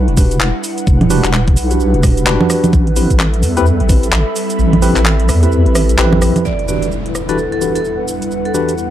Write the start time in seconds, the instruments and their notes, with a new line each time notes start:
Already playing: ambient pad G3 D4 B4 F#5, analog synth pad E4 B4 E5 F#5 B5
0.08 wobble bass E1, closed hi-hat
0.17 tine electric piano D4 F#4 G4 B4, kick, open hi-hat, shaker
0.31 closed hi-hat, shaker
0.40 wobble bass E1, clap, shaker
0.64 open hi-hat, shaker
0.78 closed hi-hat, shaker
0.87 wobble bass E1, kick, shaker
1.01 closed hi-hat, high conga
1.10 tine electric piano D4 F#4 G4 B4, open hi-hat, shaker
1.24 wobble bass E1, clap, closed hi-hat, shaker
1.33 clap, shaker
1.47 kick, closed hi-hat
1.57 wobble bass B1, open hi-hat, shaker
1.71 tine electric piano D4 F#4 G4 B4, closed hi-hat, shaker
1.80 shaker
1.94 wobble bass E1, closed hi-hat
2.03 kick, cross-stick, open hi-hat, shaker
2.17 closed hi-hat, shaker
2.27 wobble bass E1, tine electric piano D4 F#4 G4 B4, clap, shaker
2.41 high conga
2.50 cross-stick, open hi-hat, shaker
2.64 closed hi-hat, high conga, shaker
2.73 wobble bass A1, ambient pad G3 C4 E4 B4, analog synth pad A4, kick, shaker
2.87 closed hi-hat
2.95 tine electric piano C4 E4 G4 B4, analog synth pad E5, open hi-hat, shaker
3.10 wobble bass A1, kick, closed hi-hat, shaker
3.20 clap, shaker
3.34 closed hi-hat
3.43 wobble bass E2, open hi-hat, shaker
3.47 analog synth pad B5
3.57 tine electric piano C4 E4 G4 B4, closed hi-hat, shaker
3.66 shaker
3.80 wobble bass A1, closed hi-hat
3.89 tine electric piano C4 E4 G4 B4, kick, open hi-hat, shaker
4.03 closed hi-hat, shaker
4.13 wobble bass A1, clap, shaker
4.36 open hi-hat, shaker
4.50 closed hi-hat, shaker
4.59 wobble bass A1, shaker
4.73 closed hi-hat, high conga
4.82 tine electric piano C4 E4 G4 B4, open hi-hat, shaker
4.96 wobble bass A1, clap, closed hi-hat, shaker
5.06 clap, shaker
5.20 closed hi-hat
5.29 wobble bass E2, cross-stick, open hi-hat, shaker
5.43 tine electric piano C4 E4 G4 B4, closed hi-hat, shaker
5.52 shaker
5.66 wobble bass A1, closed hi-hat
5.75 cross-stick, open hi-hat, shaker
5.89 closed hi-hat, shaker
5.99 wobble bass A1, tine electric piano C4 E4 G4 B4, clap, shaker
6.13 high conga
6.22 cross-stick, open hi-hat, shaker
6.36 closed hi-hat, high conga, shaker
6.45 ambient pad E2 G3 B3 D4 F#5, analog synth pad E4, vibraphone D5, impact, shaker
6.57 analog synth pad B4, closed hi-hat
6.68 tine electric piano E3 D4 F#4 G4 B4, vibraphone D5, shaker
6.82 closed hi-hat, shaker
6.92 shaker
7.02 analog synth pad F#5, closed hi-hat
7.15 cross-stick, shaker
7.29 tine electric piano E3 D4 F#4 G4 B4, vibraphone A4, closed hi-hat, shaker
7.38 shaker
7.52 vibraphone A4, closed hi-hat
7.61 tine electric piano E3 D4 F#4 G4 B4, shaker
7.75 vibraphone A4, closed hi-hat, shaker
7.85 shaker
8.08 shaker
8.22 closed hi-hat, shaker
8.31 shaker
8.45 vibraphone A4, closed hi-hat
8.54 tine electric piano E3 D4 F#4 G4 B4, shaker
8.69 closed hi-hat, shaker
8.78 shaker